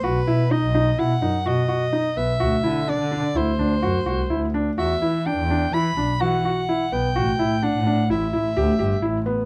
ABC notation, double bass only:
X:1
M:5/4
L:1/16
Q:1/4=127
K:Em
V:1 name="Double bass" clef=bass
B,,,2 B,,3 B,,,3 B,,2 F,, z B,,2 z4 B,,, z | D,,2 D,3 D,2 z D,, z D,, z F,,2 C,,2 D,,4 | E,,2 E,3 E,,3 E,2 B,,, z E,2 z4 B,,, z | A,,,2 A,,3 A,,2 z A,,, z A,,, z D,,2 G,,,2 A,,,4 |]